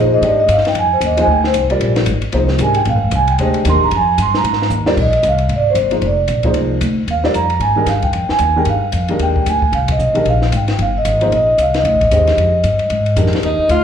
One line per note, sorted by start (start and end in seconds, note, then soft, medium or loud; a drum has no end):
0.00 0.21 A#2 medium
0.00 0.21 F3 medium
0.00 0.21 A#3 medium
0.00 0.21 D#4 medium
0.00 0.22 G#4 medium
0.00 0.21 C5 medium
0.00 0.13 C5 medium
0.14 0.23 D#5 loud
0.22 0.48 G#2 medium
0.22 0.36 G#3 medium
0.22 0.37 D4 medium
0.22 0.37 G4 medium
0.22 0.37 C5 medium
0.22 0.39 D5 medium
0.22 0.37 D#5 medium
0.22 ride medium
0.40 0.49 D#5 medium
0.48 0.73 G2 medium
0.48 0.65 F5 medium
0.48 hi-hat pedal medium
0.48 ride medium
0.58 snare soft
0.65 0.76 G5 medium
0.65 snare soft
0.65 ride soft
0.74 1.00 F2 medium
0.74 ride medium
0.79 0.92 G#5 loud
0.93 1.02 C5 medium
1.01 1.26 D#2 medium
1.01 hi-hat pedal medium
1.01 ride medium
1.05 1.19 D#5 medium
1.17 1.27 F3 medium
1.17 1.27 A#3 medium
1.17 1.27 D#4 medium
1.17 1.27 G#4 medium
1.17 1.27 C5 medium
1.17 ride medium
1.21 1.30 G#5 loud
1.27 1.53 D2 medium
1.32 1.45 G5 medium
1.44 1.52 C5 medium
1.44 snare soft
1.54 1.79 C2 medium
1.54 hi-hat pedal medium
1.54 ride medium
1.70 2.05 G3 medium
1.70 2.05 C4 medium
1.70 2.05 F4 medium
1.70 2.05 A#4 medium
1.70 2.05 D5 medium
1.70 ride soft
1.80 2.06 A#1 medium
1.80 ride medium
1.96 snare medium
1.96 ride soft
2.06 2.21 G#1 medium
2.06 hi-hat pedal soft
2.06 ride medium
2.22 muted upright bass stroke soft
2.22 ride soft
2.32 2.59 C2 medium
2.32 2.58 F3 medium
2.32 2.59 A#3 medium
2.32 2.59 D#4 medium
2.32 2.59 G#4 medium
2.32 2.59 C5 medium
2.32 ride medium
2.48 snare soft
2.59 2.85 G#1 medium
2.59 2.74 D#3 medium
2.59 2.74 G#3 soft
2.59 2.74 D4 medium
2.59 2.74 G4 medium
2.59 2.74 A#4 medium
2.59 hi-hat pedal medium
2.59 ride medium
2.63 2.77 G#5 medium
2.75 2.86 G5 medium
2.75 ride soft
2.85 2.95 A#1 medium
2.85 3.12 F5 medium
2.85 ride medium
2.95 3.03 G#1 medium
3.04 3.12 F1 medium
3.11 3.38 C2 medium
3.11 hi-hat pedal medium
3.11 ride medium
3.16 3.29 G#5 medium
3.28 3.64 G5 medium
3.28 ride soft
3.38 3.64 D2 medium
3.38 3.64 G#3 medium
3.38 3.64 D4 medium
3.38 3.64 G4 medium
3.38 3.65 C5 medium
3.38 3.65 D#5 medium
3.38 ride medium
3.54 ride soft
3.65 3.76 D#2 medium
3.65 3.80 D#3 medium
3.65 3.80 G#3 medium
3.65 3.80 D4 medium
3.65 3.80 G4 medium
3.65 3.80 A#4 medium
3.65 hi-hat pedal medium
3.65 ride medium
3.69 3.83 C6 loud
3.74 3.82 A#1 medium
3.83 3.91 G#1 medium
3.83 3.93 A#5 medium
3.91 4.17 F2 medium
3.91 ride medium
3.96 4.19 G#5 medium
4.18 4.43 G2 medium
4.18 hi-hat pedal soft
4.18 ride medium
4.22 4.35 C6 loud
4.34 4.70 A#5 medium
4.34 snare soft
4.44 4.69 G#2 medium
4.44 ride medium
4.53 snare soft
4.62 snare soft
4.70 4.96 D#2 medium
4.70 hi-hat pedal medium
4.86 4.96 G3 medium
4.86 4.96 C4 medium
4.86 4.96 F4 medium
4.86 4.96 A#4 medium
4.86 4.96 D5 medium
4.86 snare medium
4.97 5.22 A#1 medium
4.97 5.26 D#5 medium
4.97 kick medium
4.97 crash medium
5.13 ride soft
5.23 5.48 C2 medium
5.23 hi-hat pedal medium
5.23 ride medium
5.28 5.53 F5 medium
5.38 ride soft
5.48 5.74 G#1 medium
5.48 ride medium
5.56 5.69 D5 medium
5.70 6.06 C5 medium
5.75 6.01 G1 medium
5.75 hi-hat pedal medium
5.75 ride medium
5.91 6.01 F3 medium
5.91 6.01 A#3 medium
5.91 6.01 D#4 soft
5.91 6.01 G#4 soft
5.91 6.01 C5 medium
5.91 ride soft
6.01 6.27 F1 medium
6.01 ride soft
6.07 6.54 D5 medium
6.28 6.54 A#1 medium
6.28 hi-hat pedal medium
6.28 ride medium
6.43 6.79 F3 medium
6.43 6.79 A#3 medium
6.43 6.80 D#4 medium
6.43 6.80 G#4 medium
6.43 6.80 C5 medium
6.43 kick medium
6.43 ride soft
6.54 6.80 C2 medium
6.54 ride medium
6.81 7.06 D2 medium
6.81 hi-hat pedal medium
6.81 ride medium
7.07 7.33 D#2 medium
7.07 7.36 F5 medium
7.07 ride medium
7.23 7.33 G3 medium
7.23 7.33 C4 medium
7.23 7.33 F4 medium
7.23 7.34 A#4 medium
7.23 7.34 D5 medium
7.23 snare soft
7.33 7.59 F2 medium
7.33 7.62 A#5 medium
7.33 hi-hat pedal soft
7.33 ride medium
7.50 ride soft
7.60 7.86 G#2 medium
7.60 7.88 G#5 medium
7.60 ride soft
7.76 7.86 D#3 medium
7.76 7.86 G#3 medium
7.76 7.86 D4 medium
7.76 7.86 G4 medium
7.76 7.87 A#4 medium
7.86 8.12 G2 medium
7.86 8.04 F5 medium
7.86 snare soft
7.86 hi-hat pedal medium
7.86 ride medium
8.02 8.31 G5 medium
8.02 kick medium
8.02 ride soft
8.13 8.29 F2 medium
8.13 ride medium
8.29 8.57 G#5 medium
8.29 muted upright bass stroke soft
8.29 snare soft
8.39 8.65 D#2 medium
8.39 hi-hat pedal soft
8.39 ride medium
8.56 8.66 D#3 medium
8.56 8.66 G#3 medium
8.56 8.66 D4 medium
8.56 8.66 G4 medium
8.56 8.66 A#4 medium
8.56 8.68 G5 medium
8.65 8.92 G2 medium
8.65 ride medium
8.70 9.07 F5 medium
8.92 9.19 F2 medium
8.92 hi-hat pedal medium
8.92 ride medium
9.08 9.44 D#3 medium
9.08 9.44 G#3 medium
9.08 9.44 D4 medium
9.08 9.44 G4 medium
9.08 9.44 A#4 medium
9.08 ride soft
9.19 9.45 D#2 medium
9.19 9.48 G5 medium
9.19 ride soft
9.36 kick soft
9.46 9.72 D2 medium
9.46 9.75 G#5 medium
9.46 hi-hat pedal medium
9.46 ride medium
9.62 kick soft
9.72 9.98 C2 medium
9.72 9.88 F5 medium
9.72 ride medium
9.88 10.25 D#5 medium
9.88 kick medium
9.88 ride medium
9.99 10.24 B1 medium
9.99 hi-hat pedal medium
10.14 10.24 D#3 medium
10.14 10.24 G#3 medium
10.14 10.24 D4 medium
10.14 10.24 G4 medium
10.14 10.25 A#4 medium
10.14 ride soft
10.25 10.51 A#1 medium
10.25 10.54 F5 medium
10.25 ride soft
10.42 snare soft
10.52 10.77 G#1 medium
10.52 hi-hat pedal medium
10.52 ride medium
10.56 10.79 G5 medium
10.68 snare soft
10.68 ride soft
10.79 11.04 G1 medium
10.79 10.96 F5 medium
10.79 ride medium
10.98 11.30 D#5 medium
11.05 11.30 G#1 medium
11.05 hi-hat pedal medium
11.05 ride medium
11.21 11.31 F3 medium
11.21 11.31 A#3 medium
11.21 11.31 D#4 medium
11.21 11.31 G#4 medium
11.21 11.31 C5 medium
11.21 ride soft
11.31 11.57 A#1 medium
11.31 11.60 D#5 medium
11.31 ride soft
11.58 11.83 C2 medium
11.58 11.76 F5 medium
11.58 hi-hat pedal medium
11.58 ride medium
11.74 snare soft
11.74 ride soft
11.78 13.15 D#5 medium
11.84 11.94 D2 medium
11.84 ride medium
11.93 12.02 A#1 soft
12.01 12.10 G#1 medium
12.01 kick soft
12.01 ride soft
12.11 12.37 D#2 medium
12.11 12.50 D3 medium
12.11 12.50 G#3 medium
12.11 12.51 G4 medium
12.11 12.51 C5 medium
12.11 12.51 D#5 medium
12.11 hi-hat pedal medium
12.11 ride medium
12.27 snare soft
12.27 ride soft
12.37 12.63 F2 medium
12.37 ride medium
12.64 12.89 G2 medium
12.64 hi-hat pedal soft
12.64 ride medium
12.79 ride soft
12.90 13.16 G#2 medium
12.90 ride medium
13.06 ride soft
13.16 13.42 F2 medium
13.16 13.56 D#3 medium
13.16 13.56 G#3 soft
13.16 13.56 D4 soft
13.16 13.56 G4 soft
13.16 13.56 A#4 medium
13.16 hi-hat pedal medium
13.16 ride medium
13.26 snare soft
13.33 snare soft
13.33 ride soft
13.42 13.57 D#2 medium
13.42 13.68 D#4 medium
13.42 ride soft
13.46 13.69 D#5 medium
13.59 muted upright bass stroke soft
13.69 13.84 D2 medium
13.69 13.84 F4 medium
13.69 13.84 F5 medium
13.69 hi-hat pedal soft
13.69 ride medium